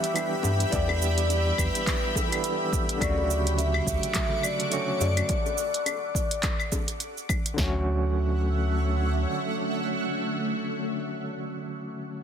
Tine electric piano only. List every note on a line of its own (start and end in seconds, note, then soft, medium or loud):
0.00 0.11 E3 loud
0.00 0.12 G3 medium
0.00 0.13 B3 medium
0.00 0.13 D4 medium
0.00 0.14 G4 loud
0.14 0.68 E3 medium
0.14 0.69 G3 medium
0.14 0.70 B3 medium
0.14 0.70 D4 medium
0.14 0.71 G4 medium
0.70 2.27 E3 medium
0.70 2.28 G3 medium
0.70 2.29 B3 medium
0.74 2.29 D4 medium
0.74 2.30 G4 medium
2.28 2.96 E3 medium
2.28 2.97 G3 medium
2.28 2.98 B3 medium
2.33 2.99 D4 medium
2.33 3.00 A4 medium
2.98 4.68 D3 loud
2.98 4.69 F#3 medium
2.98 4.70 A3 medium
3.03 4.71 C#3 medium
3.03 4.71 F#4 loud
4.70 5.26 D3 medium
4.70 5.26 F#3 medium
4.70 5.26 A3 medium
4.70 5.27 C#4 medium
4.70 5.27 F#4 medium
7.54 11.30 D3 medium
7.54 11.32 F#3 medium
7.58 11.33 A3 medium
7.58 11.34 C#4 medium
7.64 11.36 F#4 loud